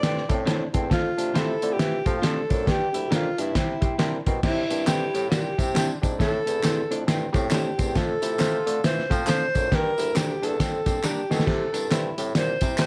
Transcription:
Already playing: D5
0.03 G2 A3 C4 E4 A4, snare, closed hi-hat
0.17 snare
0.29 A2 A3 C4 E4 A4, kick, closed hi-hat
0.46 A3 C4 D4 E4 A4 C5, snare, closed hi-hat
0.73 E2 A3 C4 E4 A4, kick, closed hi-hat
0.90 F2 A3 C4 F4 A4, kick, snare, closed hi-hat
1.17 C3 A3 C4 D4 F4 A4, closed hi-hat
1.34 C3 A3 C4 E4 F4 A4 C5, snare, closed hi-hat
1.38 A4
1.62 D3 A3 C4 F4 C5, closed hi-hat
1.73 G4
1.79 E3 A3 C4 F4 C5, snare, closed hi-hat
2.06 F3 A3 C4 F4 A4, kick, closed hi-hat
2.18 C4 F4
2.22 A3 C4 D4 F4 G4 A4 C5, snare, closed hi-hat
2.49 F#2 A3 C4 D4 F4 C5, kick, closed hi-hat
2.66 G2 G3 A#3 D4 G4, kick, snare, closed hi-hat
2.70 G4
2.93 D2 G3 A#3 D4 E4 G4, closed hi-hat
3.10 F2 G3 A#3 D4 G4 A#4 D5, snare, closed hi-hat
3.14 F4
3.38 G2 G3 A#3 D4 E4 G4, closed hi-hat
3.55 C3 G3 C4 E4 G4, kick, snare, closed hi-hat
3.81 G3 C4 E4 G4, kick, closed hi-hat
3.98 G3 C4 D4 E4 G4 A#4 C5, snare, closed hi-hat
4.26 B2 G3 C4 E4 A#4, kick, closed hi-hat
4.43 C3 G3 C4 E4 G4, kick, snare, crash
4.70 G2 G3 C4 D4 E4 G4, closed hi-hat, tambourine
4.87 G2 G3 C4 E4 G4 A4 C5, snare, clap, closed hi-hat, tambourine
5.14 A2 G3 C4 E4 G4, closed hi-hat, tambourine
5.30 A#2 G3 C4 E4 G4, snare, closed hi-hat, tambourine
5.58 C3 G3 C4 E4 G4, kick, closed hi-hat, tambourine
5.75 G3 C4 D4 E4 G4 C5, snare, clap, closed hi-hat, tambourine
6.02 G#2 G3 C4 D4 E4 G4, kick, closed hi-hat, tambourine
6.19 A2 A3 C4 E4 A4, kick, snare, closed hi-hat, tambourine
6.46 E2 A3 C4 E4 A4, closed hi-hat, tambourine
6.63 E2 A3 C4 E4 G4 A4 C5, snare, clap, closed hi-hat, tambourine
6.90 F2 A3 C4 D4 E4 A4, closed hi-hat
7.07 G2 A3 C4 E4 A4, snare, closed hi-hat, tambourine
7.33 A2 A3 C4 E4 G4, kick, closed hi-hat, tambourine
7.50 A3 C4 D4 E4 G4 A4 C5, snare, clap, closed hi-hat, tambourine
7.78 E2 A3 C4 E4 A4, kick, closed hi-hat, tambourine
7.95 F2 A3 C4 F4 A4, kick, snare, closed hi-hat, tambourine
8.22 C3 A3 C4 E4 F4 A4, closed hi-hat, tambourine
8.39 C3 A3 C4 F4 G4 A4 C5, snare, clap, closed hi-hat, tambourine
8.66 D3 A3 C4 F4 A4, closed hi-hat
8.84 E3 A3 C4 F4 C5, snare, closed hi-hat, tambourine
8.99 snare
9.10 F3 A3 C4 F4 A4, kick, closed hi-hat, tambourine
9.27 A3 C4 D4 F4 A4 C5, snare, clap, closed hi-hat, tambourine
9.55 F#2 A3 C4 D4 F4 A4, kick, closed hi-hat, tambourine
9.71 G2 G3 A#3 D4 G4 A#4, kick, snare, closed hi-hat
9.98 D2 G3 A#3 D4 E4 G4, closed hi-hat, tambourine
10.15 D2 G3 A#3 D4 G4 A#4 D5, snare, clap, closed hi-hat, tambourine
10.42 E2 G3 A#3 D4 G4 A4, closed hi-hat, tambourine
10.59 F2 G3 A#3 C4 D4 A4, kick, snare, closed hi-hat, tambourine
10.86 G3 A#3 C4 D4 G4, kick, closed hi-hat, tambourine
11.03 G3 A#3 D4 G4 A#4 D5, snare, clap, tambourine
11.30 B2 G3 A#3 C4 D4 E4 A4, snare, tambourine
11.39 snare
11.46 C3 G3 C4 E4 G4, kick, snare, splash
11.73 G2 G3 C4 D4 E4 A#4, closed hi-hat, tambourine
11.90 G2 G3 C4 E4 G4 C5, snare, clap, closed hi-hat, tambourine
12.17 A2 G3 C4 E4 G4, closed hi-hat, tambourine
12.35 A#2 G3 C4 E4 G4 C5, snare, closed hi-hat, tambourine
12.61 C3 G3 C4 E4 G4, kick, closed hi-hat, tambourine
12.78 G3 C4 D4 E4 G4 A4 C5, snare, clap, closed hi-hat, tambourine

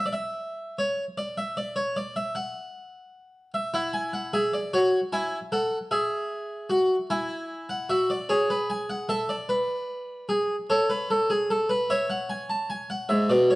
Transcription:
0.06 D5
0.13 E5
0.79 C#5
1.18 D5
1.38 E5
1.57 D5
1.76 C#5
1.97 D5
2.16 E5
2.35 F#5
3.54 E5
3.74 E4 F#5
3.93 G#5
4.13 F#5
4.33 G#4 E5
4.53 D5
4.74 F#4 C#5
5.13 E4 G#5
5.52 A4 F#5
5.91 G#4 E5
6.70 F#4
7.11 E4 G#5
7.70 F#5
7.90 F#4 E5
8.10 D5
8.29 G#4 C#5
8.50 B4
8.70 G#5
8.90 F#5
9.09 A4 E5
9.29 D5
9.49 B4
10.29 G#4
10.69 A4 C#5
10.89 B4
11.10 A4
11.30 G#4
11.50 A4
11.69 B4
11.90 C#5 E5
12.09 F#5
12.29 G#5
12.49 A5
12.70 G#5
12.90 F#5
13.09 G#2 E5
13.29 B2 D5
13.50 C#5

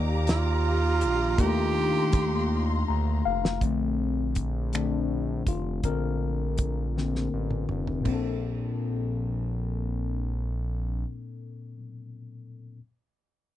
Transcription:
Already playing: D#2 D#3 A#3 F4 G4 D5 F5 A#5 D6
0.27 F4, snare, closed hi-hat
1.01 A#1, closed hi-hat
1.37 D#2 A#3 D4 D#4 G4 C6, kick, closed hi-hat
1.41 A3 F4
2.13 kick, closed hi-hat
2.88 D2 A#5
3.25 F1 F5
3.45 snare
3.61 A#1 D3 A3 C4, kick, closed hi-hat
4.35 kick, closed hi-hat
4.73 D3 A3 C4 D4, finger snap, closed hi-hat
5.47 F1 F4, kick, closed hi-hat
5.83 A#1 D3 C4 A4 A#4, kick, closed hi-hat
6.58 kick, closed hi-hat
6.97 D3 A#3 C4, snare
7.16 snare
7.34 A1
7.51 mid tom
7.69 F1, mid tom
7.87 floor tom
8.00 A#2 A#3
8.05 A#1 C4, kick, floor tom, crash
8.10 D4 A4

